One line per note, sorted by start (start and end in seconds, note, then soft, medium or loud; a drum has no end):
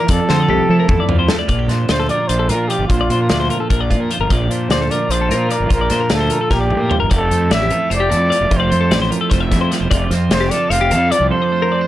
0.00 0.29 F3 medium
0.00 1.46 F4 medium
0.00 0.12 A#4 medium
0.00 0.10 A#4 medium
0.08 0.18 F2 loud
0.08 1.47 F2 medium
0.08 1.10 A4 medium
0.08 0.29 D5 medium
0.08 kick loud
0.08 closed hi-hat loud
0.29 0.48 D3 loud
0.29 1.08 F3 medium
0.29 0.40 C5 medium
0.29 snare medium
0.40 0.50 D5 medium
0.49 0.59 C2 medium
0.49 1.29 A3 medium
0.49 0.69 G4 medium
0.49 high tom medium
0.69 0.79 F3 medium
0.69 0.90 E4 medium
0.69 0.79 A4 medium
0.80 0.89 A#4 medium
0.89 0.98 E2 loud
0.89 1.48 E4 medium
0.89 0.99 A4 medium
0.89 kick loud
0.89 mid tom medium
1.00 1.19 D5 medium
1.09 1.28 F2 medium
1.09 2.07 F3 medium
1.09 floor tom medium
1.19 1.29 C5 medium
1.29 1.50 A3 medium
1.29 1.38 A4 medium
1.29 snare medium
1.39 1.48 D5 medium
1.47 1.68 A#1 medium
1.47 2.89 A#2 medium
1.47 1.59 F4 soft
1.47 1.69 D5 medium
1.47 kick medium
1.47 closed hi-hat medium
1.59 2.90 G4 soft
1.68 1.87 A#2 medium
1.68 2.29 D4 medium
1.68 1.90 C5 medium
1.68 snare soft
1.68 closed hi-hat soft
1.89 2.08 D2 medium
1.89 2.49 F4 soft
1.89 2.08 C5 medium
1.89 1.99 D5 medium
1.89 snare medium
1.89 closed hi-hat medium
2.00 2.10 A4 medium
2.09 2.70 F3 medium
2.09 2.29 A#4 medium
2.09 2.29 D5 medium
2.09 closed hi-hat soft
2.28 2.50 A#1 medium
2.28 2.90 D4 soft
2.28 2.51 C5 medium
2.28 2.39 D5 medium
2.28 closed hi-hat medium
2.39 2.50 A4 medium
2.49 2.68 A#2 medium
2.49 3.90 F4 medium
2.49 2.70 A#4 medium
2.49 2.71 A#4 medium
2.49 closed hi-hat medium
2.68 3.49 F3 medium
2.68 2.87 G4 medium
2.68 2.91 D5 medium
2.68 closed hi-hat soft
2.79 2.88 G1 medium
2.87 3.08 A#1 medium
2.87 4.32 A#2 medium
2.87 3.10 D4 soft
2.87 3.65 F4 medium
2.87 3.00 C5 medium
2.87 kick medium
2.87 closed hi-hat medium
3.01 3.10 D5 medium
3.09 3.28 A#2 medium
3.09 3.30 D4 medium
3.09 3.21 C5 medium
3.09 closed hi-hat medium
3.21 3.30 A#4 medium
3.29 3.49 D2 medium
3.29 3.70 D4 soft
3.29 3.40 D5 medium
3.29 snare medium
3.29 closed hi-hat medium
3.40 3.50 C5 medium
3.50 4.10 F3 medium
3.50 3.60 A#4 medium
3.50 closed hi-hat medium
3.60 3.70 A4 medium
3.70 3.92 A#1 medium
3.70 4.51 D4 medium
3.70 3.80 A#4 medium
3.70 kick medium
3.70 closed hi-hat medium
3.80 4.01 D5 medium
3.90 4.09 A#2 medium
3.90 4.33 F4 medium
3.90 kick medium
3.90 closed hi-hat medium
4.01 4.11 A#4 medium
4.10 4.91 F3 medium
4.10 4.20 C5 medium
4.10 closed hi-hat medium
4.19 4.29 G1 medium
4.19 4.31 A#4 medium
4.30 4.47 A#1 medium
4.30 5.68 A#2 medium
4.30 4.41 F4 medium
4.30 4.51 D5 medium
4.30 kick medium
4.30 closed hi-hat medium
4.41 5.69 G4 medium
4.48 4.68 A#2 medium
4.48 5.10 D4 medium
4.48 4.71 C5 medium
4.48 closed hi-hat soft
4.69 4.88 D2 medium
4.69 5.30 F4 soft
4.69 4.92 C5 medium
4.69 4.81 D5 medium
4.69 snare medium
4.69 closed hi-hat medium
4.81 4.91 A4 medium
4.90 5.48 F3 medium
4.90 5.12 A#4 medium
4.90 5.12 D5 medium
4.90 closed hi-hat medium
5.09 5.30 A#1 medium
5.09 5.69 D4 medium
5.09 5.51 C5 medium
5.09 5.21 D5 medium
5.09 closed hi-hat medium
5.21 5.31 A4 medium
5.29 5.48 A#2 medium
5.29 5.69 F4 medium
5.29 5.51 A#4 medium
5.29 closed hi-hat medium
5.49 6.30 F3 medium
5.49 5.70 A#4 medium
5.49 5.71 D5 medium
5.49 closed hi-hat soft
5.60 5.69 G1 medium
5.69 5.89 A#1 medium
5.69 6.49 A#2 medium
5.69 5.79 F4 medium
5.69 6.09 A#4 medium
5.69 5.81 C5 medium
5.69 kick medium
5.69 closed hi-hat medium
5.79 7.11 G4 medium
5.79 5.91 D5 medium
5.90 6.10 A#2 medium
5.90 7.08 D4 medium
5.90 6.01 C5 medium
5.90 snare soft
5.90 closed hi-hat medium
6.00 6.11 A#4 medium
6.10 6.30 D2 medium
6.10 7.15 F4 medium
6.10 6.54 A4 medium
6.10 6.20 D5 medium
6.10 snare medium
6.10 closed hi-hat medium
6.21 6.31 C5 medium
6.30 7.70 F3 medium
6.30 6.41 A#4 medium
6.30 closed hi-hat medium
6.41 6.51 A4 medium
6.50 6.74 A#1 medium
6.50 6.70 A#2 medium
6.50 6.97 G4 medium
6.50 6.60 A#4 medium
6.50 kick medium
6.50 snare soft
6.61 6.81 D5 medium
6.70 6.91 A2 soft
6.70 6.90 A#2 medium
6.70 mid tom medium
6.81 6.90 A#4 medium
6.90 7.11 G2 medium
6.90 7.00 C5 medium
6.90 floor tom medium
7.00 7.10 G1 medium
7.00 7.10 A#4 medium
7.10 7.30 F1 medium
7.10 8.50 F2 medium
7.10 8.50 G4 medium
7.10 7.31 D5 medium
7.10 kick medium
7.10 closed hi-hat medium
7.15 7.51 A4 medium
7.31 7.50 F2 medium
7.31 7.91 A3 medium
7.31 7.51 C5 medium
7.31 closed hi-hat medium
7.51 7.70 A1 medium
7.51 8.11 E4 medium
7.51 7.62 D5 medium
7.51 7.90 E5 medium
7.51 snare loud
7.51 closed hi-hat medium
7.61 7.71 G4 medium
7.70 8.31 F3 medium
7.70 7.90 A4 medium
7.70 closed hi-hat medium
7.90 8.12 F1 medium
7.90 8.71 A3 medium
7.90 8.01 C5 medium
7.90 closed hi-hat medium
7.95 8.58 D5 loud
8.00 8.10 G4 medium
8.10 8.30 F2 medium
8.10 8.50 E4 medium
8.10 8.31 A4 medium
8.10 closed hi-hat medium
8.30 9.10 F3 medium
8.30 8.51 D5 medium
8.30 closed hi-hat medium
8.41 8.50 E1 medium
8.51 8.70 F1 loud
8.51 9.92 F2 medium
8.51 8.60 F4 medium
8.51 8.59 C5 medium
8.51 kick medium
8.51 closed hi-hat medium
8.56 9.91 G4 soft
8.56 8.99 C5 medium
8.56 8.70 D5 medium
8.70 8.90 F2 medium
8.70 9.32 A3 medium
8.70 8.81 C5 medium
8.70 closed hi-hat medium
8.81 8.91 A4 medium
8.91 9.10 A1 medium
8.91 9.51 E4 medium
8.91 9.01 D5 medium
8.91 snare medium
8.91 closed hi-hat medium
9.02 9.11 C5 medium
9.10 9.72 F3 medium
9.10 9.21 A#4 medium
9.10 closed hi-hat medium
9.21 9.30 A4 medium
9.30 9.53 F1 medium
9.30 10.12 A3 medium
9.30 9.40 C5 medium
9.30 kick medium
9.30 snare soft
9.30 closed hi-hat medium
9.40 9.61 E5 medium
9.51 9.70 F2 medium
9.51 9.90 E4 medium
9.51 kick medium
9.51 snare soft
9.51 closed hi-hat medium
9.61 9.71 C5 medium
9.71 10.52 F3 medium
9.71 9.81 D5 medium
9.71 snare soft
9.71 closed hi-hat medium
9.81 9.91 E1 medium
9.81 9.90 C5 medium
9.91 10.10 F1 medium
9.91 11.29 F2 medium
9.91 11.31 F4 medium
9.91 10.11 D5 medium
9.91 kick loud
9.91 closed hi-hat medium
10.11 10.29 F2 medium
10.11 10.72 C4 medium
10.11 10.31 C5 medium
10.11 snare soft
10.11 closed hi-hat medium
10.29 10.49 F1 medium
10.29 10.92 D4 medium
10.29 10.52 C5 medium
10.29 10.42 D5 medium
10.29 snare medium
10.29 closed hi-hat medium
10.40 10.51 G4 medium
10.50 11.10 F3 medium
10.50 10.70 A4 medium
10.50 10.71 D5 medium
10.50 closed hi-hat medium
10.70 10.92 F1 medium
10.70 11.51 C4 medium
10.70 10.81 C5 medium
10.70 11.13 F5 medium
10.70 closed hi-hat medium
10.81 10.91 G4 medium
10.91 11.10 F2 medium
10.91 11.71 D4 medium
10.91 11.12 A4 medium
10.91 closed hi-hat medium
11.11 11.87 F3 medium
11.11 11.29 D5 medium
11.11 11.32 D5 medium
11.11 closed hi-hat medium
11.20 11.30 C2 medium
11.29 11.87 F2 medium
11.29 11.87 A4 medium
11.29 11.87 C5 medium
11.29 11.42 C5 medium
11.42 11.52 D5 medium
11.52 11.87 A3 medium
11.52 11.62 C5 medium
11.62 11.72 A#4 medium
11.72 11.81 C4 medium
11.72 11.82 D5 medium
11.81 11.87 D4 soft
11.81 11.87 C5 medium